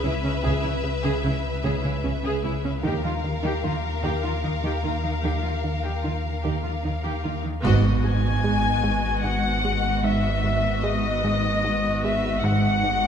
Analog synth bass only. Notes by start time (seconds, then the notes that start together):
0.04 C#3
0.44 C#3
0.84 C#3
1.24 C#3
1.64 C#3
2.04 C#3
2.44 C#3
2.83 D#3
3.24 D#3
3.64 D#3
4.04 D#3
4.44 D#3
4.85 D#3
5.25 D#3
5.64 D#3
6.04 D#3
6.45 D#3
6.85 D#3
7.25 D#3
7.65 G#2
8.04 G#2
8.44 G#3
8.83 G#2
9.24 G#2
9.65 G#3
10.04 G#2
10.44 G#2
10.84 G#3
11.24 G#2
11.64 G#2
12.04 G#3
12.44 G#2
12.84 G#2